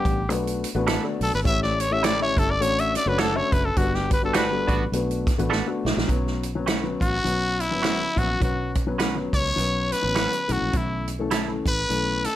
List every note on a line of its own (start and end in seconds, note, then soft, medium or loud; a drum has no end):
0.00 0.18 G3 medium
0.00 0.19 B3 medium
0.00 0.19 D4 medium
0.00 0.31 G4 medium
0.00 0.19 B4 medium
0.00 0.19 F#5 medium
0.05 0.29 A1 loud
0.05 kick loud
0.05 closed hi-hat medium
0.28 0.64 B1 loud
0.28 0.65 A3 medium
0.28 0.65 B3 medium
0.28 0.65 D4 medium
0.28 0.65 F#4 medium
0.28 0.65 B4 medium
0.28 closed hi-hat medium
0.47 closed hi-hat medium
0.64 closed hi-hat medium
0.75 0.97 A1 medium
0.75 0.94 A3 medium
0.75 0.94 B3 medium
0.75 0.94 D4 medium
0.75 0.94 F#4 medium
0.75 0.94 B4 loud
0.87 1.02 D4 loud
0.87 1.02 A4 loud
0.87 1.02 B4 loud
0.87 1.03 F#5 loud
0.87 snare loud
0.87 closed hi-hat medium
1.03 1.34 A3 medium
1.03 1.34 B3 medium
1.03 1.34 D4 medium
1.03 1.35 F#4 medium
1.03 1.35 D5 medium
1.21 1.30 B1 medium
1.21 1.33 A4 loud
1.21 open hi-hat medium
1.33 1.42 G#1 medium
1.33 1.40 B4 loud
1.44 2.33 A1 loud
1.44 1.80 A3 medium
1.44 1.80 C#4 medium
1.44 1.80 E4 medium
1.44 1.80 G4 medium
1.44 1.80 C#5 medium
1.44 1.62 E5 loud
1.44 kick loud
1.44 closed hi-hat medium
1.63 1.82 D5 loud
1.63 snare soft
1.80 1.94 C#5 loud
1.80 closed hi-hat medium
1.91 2.10 A3 medium
1.91 2.10 C#4 medium
1.91 2.10 E4 medium
1.91 2.10 G4 medium
1.91 2.10 C#5 medium
1.91 2.06 E5 loud
2.03 2.18 E4 medium
2.03 2.19 A4 medium
2.03 2.19 C#5 loud
2.03 2.21 D5 loud
2.03 2.19 G5 loud
2.03 snare loud
2.03 closed hi-hat loud
2.20 2.50 A3 medium
2.20 2.51 C#4 medium
2.20 2.51 E4 medium
2.20 2.51 G4 medium
2.20 2.40 C#5 loud
2.20 2.51 E5 medium
2.37 2.61 G1 medium
2.37 2.52 A4 loud
2.37 kick medium
2.37 closed hi-hat medium
2.50 2.63 D5 loud
2.60 2.96 A1 loud
2.60 2.96 A3 medium
2.60 2.96 C#4 medium
2.60 2.96 D4 medium
2.60 2.96 F#4 medium
2.60 2.96 C#5 medium
2.60 2.81 C#5 loud
2.60 closed hi-hat medium
2.79 2.96 E5 loud
2.79 closed hi-hat medium
2.95 3.10 D5 loud
2.95 snare soft
2.95 closed hi-hat medium
3.06 3.41 F#1 medium
3.06 3.25 A3 medium
3.06 3.25 C#4 medium
3.06 3.25 D4 medium
3.06 3.26 F#4 medium
3.06 3.22 B4 medium
3.06 3.26 C#5 medium
3.18 3.34 D4 loud
3.18 3.34 A4 medium
3.18 3.38 A4 medium
3.18 3.34 C#5 loud
3.18 3.34 F#5 loud
3.18 snare loud
3.18 closed hi-hat medium
3.34 3.65 A3 medium
3.34 3.65 C#4 medium
3.34 3.65 D4 medium
3.34 3.66 F#4 medium
3.34 3.54 C#5 loud
3.34 3.66 E5 medium
3.52 3.71 F#1 medium
3.52 3.67 B4 medium
3.52 kick loud
3.52 closed hi-hat medium
3.65 3.79 A4 medium
3.76 4.65 G1 loud
3.76 4.12 G3 medium
3.76 4.12 B3 medium
3.76 4.12 D4 medium
3.76 4.12 F#4 medium
3.76 3.96 F#4 medium
3.76 4.12 B4 medium
3.76 kick loud
3.76 closed hi-hat medium
3.94 4.11 G4 medium
3.94 snare soft
4.11 4.23 B4 medium
4.11 kick loud
4.11 closed hi-hat medium
4.23 4.41 G3 medium
4.23 4.41 B3 medium
4.23 4.42 D4 medium
4.23 4.42 F#4 medium
4.23 4.35 A4 medium
4.23 4.42 B4 medium
4.33 4.45 B3 medium
4.33 4.49 D4 medium
4.33 4.46 D4 medium
4.33 4.45 F#4 loud
4.33 4.49 G4 loud
4.33 4.50 B4 loud
4.33 4.90 B4 loud
4.33 4.50 F#5 loud
4.33 snare loud
4.33 closed hi-hat loud
4.51 4.82 G3 medium
4.51 4.82 B3 medium
4.51 4.82 D4 medium
4.51 4.82 F#4 medium
4.51 4.82 A4 medium
4.68 4.87 A1 medium
4.68 4.83 B3 loud
4.68 4.83 D4 loud
4.68 4.83 F#4 loud
4.68 kick loud
4.68 closed hi-hat medium
4.92 5.27 B1 medium
4.92 5.28 A3 medium
4.92 5.28 B3 medium
4.92 5.28 D4 medium
4.92 5.28 F#4 medium
4.92 5.29 B4 medium
4.92 closed hi-hat medium
5.11 closed hi-hat medium
5.27 kick loud
5.27 snare soft
5.27 closed hi-hat medium
5.38 5.61 A1 medium
5.38 5.57 A3 medium
5.38 5.57 B3 medium
5.38 5.57 D4 medium
5.38 5.58 F#4 medium
5.38 5.58 B4 loud
5.38 closed hi-hat medium
5.50 5.65 D4 medium
5.50 5.66 A4 medium
5.50 5.66 B4 loud
5.50 5.66 F#5 loud
5.50 snare medium
5.66 5.97 A3 medium
5.66 5.97 B3 medium
5.66 5.98 D4 medium
5.66 5.98 F#4 medium
5.66 5.98 B4 medium
5.85 5.94 B1 medium
5.85 snare loud
5.97 6.06 A#1 medium
5.97 snare loud
6.08 6.97 B1 loud
6.08 6.43 F#3 medium
6.08 6.44 B3 medium
6.08 6.44 C#4 medium
6.08 6.44 B4 medium
6.08 kick medium
6.08 closed hi-hat medium
6.27 snare soft
6.43 closed hi-hat medium
6.55 6.74 F#3 medium
6.55 6.74 B3 medium
6.55 6.74 C#4 medium
6.55 6.74 B4 medium
6.66 6.82 C#4 medium
6.66 6.82 F#4 medium
6.66 6.82 B4 medium
6.66 6.83 F#5 medium
6.66 snare loud
6.66 closed hi-hat medium
6.84 7.14 F#3 medium
6.84 7.14 B3 medium
6.84 7.14 C#4 medium
6.84 7.14 B4 medium
7.01 7.19 A1 medium
7.01 7.62 F#4 loud
7.01 kick medium
7.01 closed hi-hat medium
7.24 7.72 B1 medium
7.24 7.60 F#3 medium
7.24 7.60 B3 medium
7.24 7.60 C#4 medium
7.24 7.60 B4 medium
7.24 closed hi-hat medium
7.60 8.20 E4 loud
7.60 closed hi-hat medium
7.71 8.06 A1 medium
7.71 8.02 F#3 medium
7.71 8.02 B3 medium
7.71 8.02 C#4 medium
7.71 8.02 B4 medium
7.82 7.98 C#4 medium
7.82 7.98 F#4 medium
7.82 7.98 B4 medium
7.82 7.98 F#5 medium
7.82 snare loud
7.82 closed hi-hat medium
8.16 8.35 A#1 medium
8.16 8.34 F#3 medium
8.16 8.34 B3 medium
8.16 8.34 C#4 medium
8.16 8.42 F#4 loud
8.16 8.34 B4 medium
8.16 kick medium
8.16 closed hi-hat medium
8.40 9.30 B1 loud
8.40 8.76 F#3 medium
8.40 8.77 B3 medium
8.40 8.77 C#4 medium
8.40 8.74 F#4 medium
8.40 8.77 B4 medium
8.40 kick loud
8.40 closed hi-hat medium
8.75 kick medium
8.75 closed hi-hat medium
8.87 9.06 F#3 medium
8.87 9.06 B3 medium
8.87 9.06 C#4 medium
8.87 9.06 B4 medium
8.98 9.14 C#4 medium
8.98 9.14 F#4 medium
8.98 9.14 B4 medium
8.98 9.15 F#5 medium
8.98 snare loud
8.98 closed hi-hat loud
9.15 9.46 F#3 medium
9.15 9.46 B3 medium
9.15 9.47 C#4 medium
9.15 9.47 B4 medium
9.33 9.52 C#2 medium
9.33 9.94 C#5 loud
9.33 kick loud
9.33 closed hi-hat medium
9.56 9.92 B1 medium
9.56 9.92 F#3 medium
9.56 9.92 B3 medium
9.56 9.92 C#4 medium
9.56 9.93 B4 medium
9.56 closed hi-hat medium
9.92 10.54 B4 loud
9.92 snare soft
9.92 closed hi-hat medium
10.03 10.26 A1 medium
10.03 10.34 F#3 medium
10.03 10.34 B3 medium
10.03 10.34 C#4 medium
10.03 10.34 B4 medium
10.15 10.31 C#4 medium
10.15 10.31 F#4 medium
10.15 10.31 B4 loud
10.15 10.31 F#5 medium
10.15 snare loud
10.15 closed hi-hat medium
10.33 closed hi-hat soft
10.48 10.59 B1 loud
10.48 11.07 E3 medium
10.48 11.07 A3 medium
10.48 11.08 C#4 medium
10.48 11.08 A4 medium
10.48 closed hi-hat medium
10.52 10.78 F#4 loud
10.62 10.71 A#1 medium
10.73 11.62 B1 loud
10.73 11.10 E4 medium
10.73 kick loud
10.73 closed hi-hat medium
11.08 closed hi-hat medium
11.19 11.38 E3 medium
11.19 11.39 A3 medium
11.19 11.39 C#4 medium
11.19 11.39 A4 medium
11.31 11.47 E4 medium
11.31 11.47 A4 medium
11.31 11.47 C#5 medium
11.31 11.47 E5 medium
11.31 snare loud
11.31 closed hi-hat loud
11.47 11.78 E3 medium
11.47 11.79 A3 medium
11.47 11.79 C#4 medium
11.47 11.79 A4 medium
11.66 11.84 A1 medium
11.66 12.27 B4 loud
11.66 kick medium
11.66 closed hi-hat medium
11.89 12.25 B1 medium
11.89 12.25 E3 medium
11.89 12.25 A3 medium
11.89 12.25 C#4 medium
11.89 12.26 A4 medium
11.89 closed hi-hat medium
12.24 12.36 A4 loud
12.24 snare soft
12.24 closed hi-hat medium